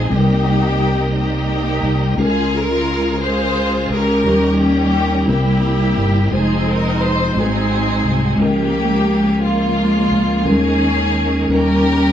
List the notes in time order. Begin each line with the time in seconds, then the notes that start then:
Already playing: G#3 D#4 F4 G#4 C5
0.08 C2 C3 G3 C4 D#4 A#4
0.13 A#3 D#4 G4 G#4
0.20 A#4
1.17 A#3 D#4 G4
1.83 C2
2.15 C#2 C#3 G#3 C#4 F4 A#4
2.20 F4 G#4 A#4
2.54 F4 A#4
3.22 F4 G#4 C5
3.90 C#2 C#4 G4 A#4
4.24 D#2 D#3 F3 G3 C#4 D#4 A#4
4.31 G3
4.61 A#3 C#4 G4
5.27 C2 C3 G3 A#3 C4 E4 G4 A#4
5.97 G1
6.30 F1 F3 G#3 C4 D#4 F4 G#4 C5
6.67 A#4
7.01 C5
7.33 G#1 G#2 F#3 G#3 C4 D#4 F#4 G#4
7.43 A3
8.04 C2
8.36 C#2 C#3 D#3 G#3 A#3 C#4
8.40 A#3 F4 G4 A#4
8.46 F3
9.44 G#3 A#3 F4
10.11 C#2
10.44 D#2 D#3 G3 A#3 C#4 D#4 G#4 A#4
10.48 G#3 G#4
11.48 D#2 D#3 G3 A#3 C#4 D#4 F#4 G4 A#4
11.56 G4